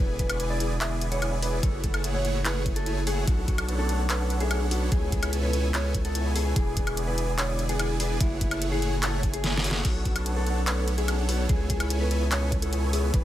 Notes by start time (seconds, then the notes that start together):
Already playing: F#4 A4 B4 C#5
0.00 E1 D3 B3 E4 G#4 B4 D5 G#5
0.09 G#4
0.19 B4, kick, closed hi-hat
0.29 B3 E4 G#4 D5 C#6, closed hi-hat, high woodblock
0.40 B3 E4 G#4 B4 D5 G#5, closed hi-hat
0.50 G#4 D5
0.60 B3 E4 G#4 D5 G#5, closed hi-hat
0.71 G#4
0.81 B3 E4 G#4 D5 E5, clap, closed hi-hat
0.91 B3 E4 G#4 D5 G#5
1.01 B4, closed hi-hat
1.12 B3 E4 G#4 C#5 D5 F#5, closed hi-hat
1.22 B3 E4 G#4 D5 G#5, closed hi-hat, high woodblock
1.32 G#4
1.42 B3 E4 G#4 B4 D5 G#5, open hi-hat
1.53 D5
1.63 F#1 A2 A3 E4 G#4 A4 C#5, kick, closed hi-hat
1.73 F#4
1.84 G#4 A4, kick, closed hi-hat
1.94 A3 E4 G#4 A4 C#5 A5, closed hi-hat, high woodblock
2.04 A3 E4 G#4 C#5 F#5, closed hi-hat
2.14 F#4 C#5
2.25 A3 E4 G#4 C#5 F#5, closed hi-hat
2.35 F#4
2.45 A3 E4 F#4 G#4 B4 C#5 F#5, clap, closed hi-hat
2.56 A3 E4 G#4 A4 C#5 F#5
2.66 A3 E4 G#4 C#5 G#5, kick, closed hi-hat
2.76 F#4 A4, closed hi-hat
2.86 A3 E4 G#4 C#5 G#5, closed hi-hat
2.97 F#4
3.07 A3 E4 G#4 C#5 F#5, open hi-hat
3.17 A4
3.27 B1 A3 B3 C#4 D4 F#4 A4 C#5 F#5, kick, closed hi-hat
3.38 A4
3.48 F#4 B4, kick, closed hi-hat
3.58 B3 D4 A4 B4 C#5 A5, closed hi-hat, high woodblock
3.68 B3 D4 A4 B4 C#5 F#5, closed hi-hat
3.79 A4
3.89 B3 D4 F#4 A4 C#5 F#5, closed hi-hat
3.99 A4
4.10 B3 D4 A4 B4 C#5 F#5, clap, closed hi-hat
4.20 B3 D4 A4 C#5 F#5
4.30 B4, closed hi-hat
4.40 B3 D4 G#4 A4 C#5 E5, closed hi-hat
4.51 B3 D4 F#4 A4 C#5 F#5, closed hi-hat, high woodblock
4.61 A4
4.71 B3 D4 F#4 A4 B4 C#5 F#5, open hi-hat
4.81 C#5
4.92 C#2 B2 B3 C#4 E4 G#4 A4 C#5 G#5, kick, closed hi-hat
5.02 G#4
5.12 G#4 A4, kick, closed hi-hat
5.23 B3 E4 A4 C#5 B5, closed hi-hat, high woodblock
5.33 B3 E4 A4 C#5 G#5, closed hi-hat
5.43 G#4 B4
5.53 B3 E4 A4 C#5 G#5, closed hi-hat
5.64 G#4
5.74 B3 E4 G#4 A4 C#5 G#5, clap, closed hi-hat
5.84 B3 E4 A4 B4 C#5 G#5
5.95 A4, kick, closed hi-hat
6.05 B3 E4 G#4 A4 C#5 F#5, closed hi-hat
6.15 B3 E4 A4 C#5 G#5, closed hi-hat
6.25 G#4
6.36 B3 E4 G#4 A4 C#5 G#5, open hi-hat
6.46 B4
6.56 E1 D3 B3 E4 G#4 D5 G#5, kick, closed hi-hat
6.66 G#4
6.77 G#4 B4, kick, closed hi-hat
6.87 B3 E4 G#4 B4 D5 C#6, closed hi-hat, high woodblock
6.97 B3 E4 G#4 B4 D5 G#5, closed hi-hat
7.08 G#4 B4
7.18 B3 E4 G#4 D5 G#5, closed hi-hat
7.28 G#4
7.38 B3 E4 G#4 C#5 D5 G#5, clap, closed hi-hat
7.49 B3 E4 G#4 D5 G#5
7.59 B4, closed hi-hat
7.69 B3 E4 G#4 D5 F#5, closed hi-hat
7.79 B3 E4 G#4 D5 G#5, closed hi-hat, high woodblock
7.90 G#4
8.00 B3 E4 G#4 B4 D5 G#5, open hi-hat
8.10 D5
8.20 F#1 A2 A3 E4 G#4 F#5, kick, closed hi-hat
8.31 F#4
8.41 E4 G#4, kick, closed hi-hat
8.51 A3 E4 G#4 C#5 A5, closed hi-hat, high woodblock
8.62 A3 E4 G#4 C#5 F#5, closed hi-hat
8.72 F#4 G#4
8.82 A3 E4 G#4 C#5 F#5, closed hi-hat
8.92 F#4
9.03 A3 E4 F#4 G#4 A4 C#5 F#5, clap, closed hi-hat
9.13 A3 E4 G#4 A4 C#5 F#5
9.23 A3 E4 G#4 C#5 G#5, kick, closed hi-hat
9.34 G#4, closed hi-hat
9.44 A3 E4 G#4 C#5 G#5, snare, closed hi-hat
9.54 A4, snare
9.64 A3 E4 F#4 G#4 C#5 E5 F#5, open hi-hat
9.71 F#4, snare
9.85 B1 A3 C#4 D4 F#4 C#5, kick, closed hi-hat, crash
9.95 A4
10.05 F#4 B4, kick, closed hi-hat
10.16 B3 D4 A4 B4 C#5 A5, closed hi-hat, high woodblock
10.26 B3 D4 A4 B4 C#5 F#5, closed hi-hat
10.36 A4
10.46 B3 D4 F#4 A4 C#5 F#5, closed hi-hat
10.57 A4
10.67 B3 D4 A4 B4 C#5 F#5, clap, closed hi-hat
10.77 B3 D4 A4 C#5 F#5
10.88 B4, closed hi-hat
10.98 B3 D4 G#4 A4 C#5 E5, closed hi-hat
11.08 B3 D4 F#4 A4 C#5 F#5, closed hi-hat, high woodblock
11.18 A4
11.29 B3 D4 F#4 A4 B4 C#5 F#5, open hi-hat
11.39 C#5
11.49 C#2 B2 B3 C#4 E4 G#4 A4 C#5 G#5, kick, closed hi-hat
11.60 G#4
11.70 G#4 A4, kick, closed hi-hat
11.80 B3 E4 A4 C#5 B5, closed hi-hat, high woodblock
11.90 B3 E4 A4 C#5 G#5, closed hi-hat
12.01 G#4 B4
12.11 B3 E4 A4 C#5 G#5, closed hi-hat
12.21 G#4
12.31 B3 E4 G#4 A4 C#5 G#5, clap, closed hi-hat
12.42 B3 E4 A4 B4 C#5 G#5
12.52 A4, kick, closed hi-hat
12.62 B3 E4 G#4 A4 C#5 F#5, closed hi-hat
12.73 B3 E4 A4 C#5 G#5, closed hi-hat
12.83 G#4
12.93 B3 E4 G#4 A4 C#5 G#5, open hi-hat
13.03 B4
13.14 E1 D3 B3 E4 G#4 B4 D5, kick, closed hi-hat